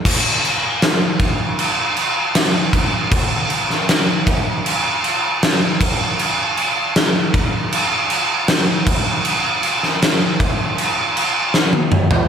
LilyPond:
\new DrumStaff \with { instrumentName = "Drums" } \drummode { \time 4/4 \tempo 4 = 78 <cymc bd>8 cymc8 <cymc sn>8 <cymc bd>8 cymc8 cymc8 <cymc sn>8 <cymc bd>8 | <cymc bd>8 cymc16 sn16 <cymc sn>8 <cymc bd>8 cymc8 cymc8 <cymc sn>8 <cymc bd>8 | cymc8 cymc8 <cymc sn>8 <cymc bd>8 cymc8 cymc8 <cymc sn>8 <cymc bd>8 | cymc8 cymc16 sn16 <cymc sn>8 <cymc bd>8 cymc8 cymc8 sn16 tommh16 toml16 tomfh16 | }